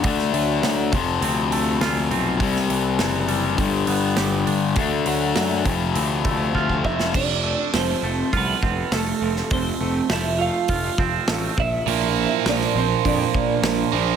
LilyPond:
<<
  \new Staff \with { instrumentName = "Clean electric guitar" } { \time 4/4 \key f \lydian \tempo 4 = 102 r1 | r1 | r2. r8 <e' e''>8 | <d' d''>4 <c' c''>4 <b b'>4 <a a'>4 |
<c' c''>4 <e' e''>8 <f' f''>2 <e' e''>8~ | <e' e''>4 <d' d''>8 <c' c''>8 <d' d''>2 | }
  \new Staff \with { instrumentName = "Clean electric guitar" } { \time 4/4 \key f \lydian d8 fis8 fis8 f,8 c'8 a8 f'8 c'8 | c8 e8 e8 g8 g,8 b8 g'8 d'8 | d8 fis8 fis8 f,8 c'8 a8 f'8 c'8 | f,8 a8 f8 a8 f'8 c'8 a8 f8 |
f,8 a8 f8 a8 f'8 c'8 a8 bes,8 | r1 | }
  \new Staff \with { instrumentName = "Overdriven electric guitar" } { \clef bass \time 4/4 \key f \lydian r1 | r1 | r1 | r1 |
r1 | <bes, f bes>2.~ <bes, f bes>8 <bes, f bes>8 | }
  \new Staff \with { instrumentName = "Distorted electric guitar" } { \clef bass \time 4/4 \key f \lydian <d a d'>4. <f, c f>2~ <f, c f>8 | <c g c'>2 <g, d g>2 | <d a d'>4. <f, c f>2~ <f, c f>8 | r1 |
r1 | r1 | }
  \new Staff \with { instrumentName = "Picked electric bass" } { \clef bass \time 4/4 \key f \lydian d,8 d,8 d,8 f,,8 d,4 d,8 b,,8 | c,8 c,8 fis,,4 g,,8 g,,8 g,,8 g,,8 | d,8 d,8 fis,8 f,,8 d,4 d,8 f,,8 | f,,4 f,,8 f,,8 c,8 f,,8 f,,8 f,,8 |
f,,8 f,,8 f,,4 f,,8 f,,8 a,,8 bes,,8 | bes,,4 bes,,8 bes,,8 f,8 bes,,8 bes,,8 bes,,8 | }
  \new DrumStaff \with { instrumentName = "Drums" } \drummode { \time 4/4 <hho bd>16 sn16 hho8 <hho sn>8 <hho bd>8 hho8 hho8 <hho sn>8 hho8 | <hho bd>16 sn16 hho8 <hho sn>8 hho8 <hho bd>8 hho8 <hho sn>8 hho8 | <hho bd>8 hho8 <hho sn>8 <hho bd>8 hho8 <hho bd>8 bd16 bd16 bd16 sn16 | <cymc bd>4 <hho sn>4 <hho bd>8 bd8 <hho sn>8. sn16 |
<hho bd>4 <hho sn>4 <hho bd>8 bd8 <hho sn>8 bd8 | hho4 <hho sn>16 sn8. <hho bd>8 bd8 <hho sn>4 | }
>>